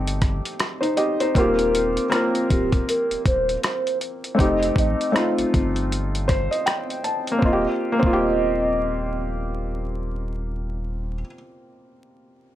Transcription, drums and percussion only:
0.07 closed hi-hat soft
0.22 kick medium
0.22 cross-stick soft
0.22 closed hi-hat medium
0.45 closed hi-hat soft
0.59 cross-stick loud
0.59 closed hi-hat medium
0.83 closed hi-hat soft
0.97 closed hi-hat medium
1.20 closed hi-hat soft
1.35 kick medium
1.35 closed hi-hat medium
1.59 closed hi-hat soft
1.75 closed hi-hat medium
1.97 closed hi-hat soft
2.12 cross-stick loud
2.12 closed hi-hat medium
2.35 closed hi-hat soft
2.50 kick loud
2.50 closed hi-hat medium
2.72 kick medium
2.72 closed hi-hat soft
2.89 closed hi-hat medium
3.11 closed hi-hat soft
3.26 kick medium
3.26 closed hi-hat medium
3.49 closed hi-hat soft
3.64 cross-stick medium
3.64 closed hi-hat medium
3.87 closed hi-hat soft
4.01 closed hi-hat medium
4.24 closed hi-hat soft
4.39 kick medium
4.39 closed hi-hat medium
4.63 closed hi-hat soft
4.76 kick medium
4.76 closed hi-hat medium
5.01 closed hi-hat soft
5.16 cross-stick medium
5.16 closed hi-hat medium
5.38 closed hi-hat soft
5.54 kick medium
5.54 closed hi-hat medium
5.76 closed hi-hat soft
5.92 closed hi-hat medium
6.15 closed hi-hat soft
6.29 kick medium
6.29 cross-stick soft
6.29 closed hi-hat medium
6.52 closed hi-hat soft
6.67 cross-stick loud
6.67 closed hi-hat medium
6.90 closed hi-hat soft
7.04 closed hi-hat medium
7.27 closed hi-hat soft
7.42 kick medium
8.03 kick medium

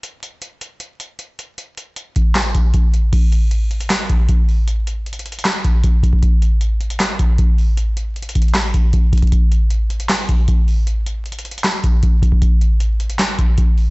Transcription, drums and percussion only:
0.03 closed hi-hat medium
0.23 closed hi-hat medium
0.42 closed hi-hat medium
0.61 closed hi-hat medium
0.80 closed hi-hat medium
1.00 closed hi-hat medium
1.19 closed hi-hat medium
1.39 closed hi-hat medium
1.58 closed hi-hat medium
1.77 closed hi-hat medium
1.96 closed hi-hat medium
2.16 kick medium
2.16 closed hi-hat medium
2.35 snare loud
2.35 clap medium
2.35 closed hi-hat medium
2.55 kick medium
2.55 closed hi-hat medium
2.74 kick medium
2.74 closed hi-hat medium
2.94 closed hi-hat medium
3.13 kick loud
3.13 closed hi-hat medium
3.13 crash medium
3.32 closed hi-hat medium
3.51 closed hi-hat medium
3.71 closed hi-hat medium
3.80 closed hi-hat medium
3.90 snare loud
3.90 clap medium
3.90 closed hi-hat loud
4.09 kick medium
4.09 closed hi-hat medium
4.29 kick loud
4.29 closed hi-hat medium
4.49 open hi-hat medium
4.68 closed hi-hat medium
4.87 closed hi-hat medium
5.06 closed hi-hat soft
5.13 closed hi-hat medium
5.19 closed hi-hat medium
5.26 closed hi-hat soft
5.32 closed hi-hat medium
5.39 closed hi-hat medium
5.45 snare loud
5.45 clap medium
5.45 closed hi-hat medium
5.64 kick medium
5.64 closed hi-hat medium
5.84 kick medium
5.84 closed hi-hat medium
6.03 kick loud
6.03 closed hi-hat medium
6.13 kick medium
6.23 kick loud
6.23 closed hi-hat medium
6.42 closed hi-hat medium
6.61 closed hi-hat medium
6.81 closed hi-hat medium
6.90 closed hi-hat medium
6.99 snare loud
6.99 clap medium
6.99 closed hi-hat loud
7.19 kick medium
7.19 closed hi-hat medium
7.38 kick loud
7.38 closed hi-hat medium
7.58 open hi-hat medium
7.77 closed hi-hat medium
7.97 closed hi-hat medium
8.16 closed hi-hat soft
8.23 closed hi-hat medium
8.29 closed hi-hat medium
8.35 kick medium
8.35 closed hi-hat medium
8.42 closed hi-hat medium
8.48 closed hi-hat soft
8.54 snare loud
8.54 clap medium
8.54 closed hi-hat loud
8.74 kick medium
8.74 closed hi-hat medium
8.93 kick medium
8.93 closed hi-hat medium
9.13 kick loud
9.13 closed hi-hat medium
9.13 open hi-hat medium
9.18 closed hi-hat medium
9.22 kick loud
9.22 closed hi-hat soft
9.27 closed hi-hat soft
9.32 kick loud
9.32 closed hi-hat medium
9.52 closed hi-hat medium
9.70 closed hi-hat medium
9.90 closed hi-hat medium
10.00 closed hi-hat medium
10.09 snare loud
10.09 clap medium
10.09 closed hi-hat medium
10.29 kick medium
10.29 closed hi-hat medium
10.48 kick medium
10.48 closed hi-hat medium
10.68 open hi-hat medium
10.87 closed hi-hat medium
11.06 closed hi-hat medium
11.26 closed hi-hat soft
11.32 closed hi-hat medium
11.39 closed hi-hat medium
11.45 closed hi-hat soft
11.51 closed hi-hat medium
11.58 closed hi-hat medium
11.64 snare loud
11.64 clap medium
11.64 closed hi-hat medium
11.84 kick medium
11.84 closed hi-hat medium
12.03 kick medium
12.03 closed hi-hat medium
12.22 kick loud
12.22 closed hi-hat medium
12.32 kick loud
12.42 kick loud
12.42 closed hi-hat medium
12.61 closed hi-hat medium
12.80 closed hi-hat medium
13.00 closed hi-hat soft
13.10 closed hi-hat medium
13.19 snare loud
13.19 clap medium
13.19 closed hi-hat loud
13.39 kick medium
13.39 closed hi-hat medium
13.58 kick loud
13.58 closed hi-hat medium
13.78 open hi-hat medium

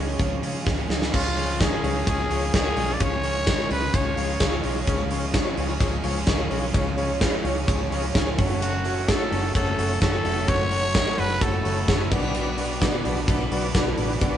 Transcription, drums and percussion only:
0.20 kick loud
0.20 closed hi-hat medium
0.43 open hi-hat medium
0.67 kick loud
0.67 snare medium
0.90 snare medium
1.02 snare medium
1.14 kick loud
1.14 crash loud
1.37 open hi-hat medium
1.61 kick loud
1.61 snare loud
1.61 hi-hat pedal medium
1.61 ride medium
1.84 open hi-hat medium
2.07 kick loud
2.07 hi-hat pedal medium
2.07 ride medium
2.31 open hi-hat medium
2.54 kick loud
2.54 snare loud
2.54 hi-hat pedal medium
2.54 ride medium
2.77 open hi-hat medium
3.00 kick loud
3.00 hi-hat pedal medium
3.00 ride medium
3.23 open hi-hat medium
3.47 kick loud
3.47 snare loud
3.47 hi-hat pedal medium
3.47 ride medium
3.71 open hi-hat medium
3.94 kick loud
3.94 hi-hat pedal medium
3.94 ride medium
4.17 open hi-hat medium
4.40 kick loud
4.40 snare loud
4.40 hi-hat pedal medium
4.40 ride medium
4.64 open hi-hat medium
4.87 kick loud
4.87 hi-hat pedal medium
4.87 ride medium
5.11 open hi-hat medium
5.34 kick loud
5.34 snare loud
5.34 hi-hat pedal medium
5.34 ride medium
5.57 open hi-hat medium
5.80 kick loud
5.80 hi-hat pedal medium
5.80 ride medium
6.04 open hi-hat medium
6.27 kick loud
6.27 snare loud
6.27 hi-hat pedal medium
6.27 ride medium
6.51 open hi-hat medium
6.74 kick loud
6.74 hi-hat pedal medium
6.74 ride medium
6.98 open hi-hat medium
7.21 kick loud
7.21 snare loud
7.21 hi-hat pedal medium
7.21 ride medium
7.45 open hi-hat medium
7.68 kick loud
7.68 hi-hat pedal medium
7.68 ride medium
7.92 open hi-hat medium
8.15 kick loud
8.15 snare loud
8.15 hi-hat pedal medium
8.15 ride medium
8.38 kick loud
8.38 open hi-hat medium
8.62 hi-hat pedal medium
8.62 ride medium
8.85 open hi-hat medium
9.08 kick loud
9.08 snare loud
9.08 hi-hat pedal medium
9.08 ride medium
9.32 open hi-hat medium
9.55 kick loud
9.55 hi-hat pedal medium
9.55 ride medium
9.79 open hi-hat medium
10.02 kick loud
10.02 snare loud
10.02 ride medium
10.25 open hi-hat medium
10.48 kick loud
10.48 hi-hat pedal medium
10.48 ride medium
10.72 open hi-hat medium
10.95 kick loud
10.95 snare loud
10.95 hi-hat pedal medium
10.95 ride medium
11.18 open hi-hat medium
11.41 kick loud
11.41 hi-hat pedal medium
11.41 ride medium
11.65 open hi-hat medium
11.88 kick loud
11.88 snare loud
11.88 hi-hat pedal medium
11.88 ride medium
12.12 kick loud
12.12 crash medium
12.34 hi-hat pedal medium
12.34 ride medium
12.58 open hi-hat medium
12.82 kick loud
12.82 snare loud
12.82 hi-hat pedal medium
12.82 ride medium
13.05 open hi-hat medium
13.28 kick loud
13.28 hi-hat pedal medium
13.28 ride medium
13.52 open hi-hat medium
13.75 kick loud
13.75 snare loud
13.75 hi-hat pedal medium
13.75 ride medium
13.98 open hi-hat medium
14.21 kick loud
14.21 hi-hat pedal medium
14.21 ride medium

